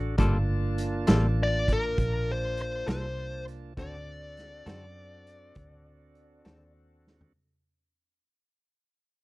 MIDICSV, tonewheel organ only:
0, 0, Header, 1, 2, 480
1, 0, Start_track
1, 0, Tempo, 597193
1, 149, Time_signature, 12, 3, 24, 8
1, 7422, End_track
2, 0, Start_track
2, 0, Title_t, "Tonewheel organ"
2, 0, Program_c, 0, 16
2, 0, Note_on_c, 0, 62, 66
2, 0, Note_on_c, 0, 66, 65
2, 0, Note_on_c, 0, 69, 63
2, 128, Note_off_c, 0, 66, 0
2, 129, Note_off_c, 0, 62, 0
2, 129, Note_off_c, 0, 69, 0
2, 148, Note_on_c, 0, 58, 64
2, 148, Note_on_c, 0, 62, 66
2, 154, Note_on_c, 0, 65, 61
2, 162, Note_on_c, 0, 81, 67
2, 2999, Note_off_c, 0, 58, 0
2, 2999, Note_off_c, 0, 62, 0
2, 3002, Note_off_c, 0, 65, 0
2, 3006, Note_off_c, 0, 81, 0
2, 3043, Note_on_c, 0, 69, 66
2, 3044, Note_on_c, 0, 60, 67
2, 3048, Note_on_c, 0, 62, 69
2, 3054, Note_on_c, 0, 66, 66
2, 5887, Note_off_c, 0, 60, 0
2, 5887, Note_off_c, 0, 69, 0
2, 5889, Note_off_c, 0, 62, 0
2, 5893, Note_off_c, 0, 66, 0
2, 7422, End_track
0, 0, End_of_file